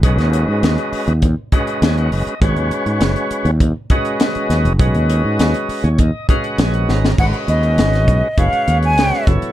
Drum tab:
CC |----------------|----------------|----------------|x---------------|
HH |xxx-xxoxx-xxxxox|xxxxxxxxx-xxxxxx|xxx-xxoxx-xxxx--|-xxxxxx-xxxxx-xx|
SD |-o--o-------o---|----o-------o-o-|----o-------o-oo|----oo------oo--|
BD |o-------o-o-----|o-------o-o-----|o-------o-o-----|o-----o-o-----o-|